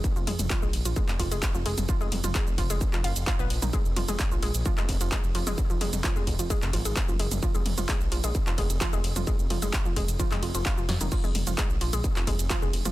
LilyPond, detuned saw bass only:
\new Staff \with { instrumentName = "Detuned saw bass" } { \clef bass \time 4/4 \key f \minor \tempo 4 = 130 r16 f,,16 f,,16 f,,16 r16 bes,,16 bes,,16 bes,,16 r16 f,,16 f,,16 f,,16 r16 f,,16 f,,16 f,,16 | r16 f,,16 f,,16 f,,16 r16 f,,16 f,,16 f,,16 r16 f,,16 ges,,16 f,,16 r16 bes,,16 bes,,16 bes,,16 | r16 f,,16 f,,16 f,,16 r16 bes,,16 bes,,16 bes,,16 r16 f,,16 f,,16 f,,16 r16 f,,16 f,,16 f,,16 | r16 f,,16 f,,16 f,,16 r16 f,,16 f,,16 f,,16 r16 f,,16 aes,,16 aes,,16 r16 ges,,16 ges,,16 ges,,16 |
r16 f,,16 f,,16 f,,16 r16 bes,,16 bes,,16 bes,,16 r16 f,,16 f,,16 f,,16 r16 f,,16 f,,16 f,,16 | r16 f,,16 f,,16 f,,16 r16 f,,16 f,,16 f,,16 r16 f,,16 f,,16 f,,16 r16 f,,16 f,16 f,,16 | r16 f,,16 f,,16 f,,16 r16 bes,,16 bes,,16 bes,,16 r16 f,,16 f,,16 f,,16 r16 f,,16 f,,16 f,,16 | }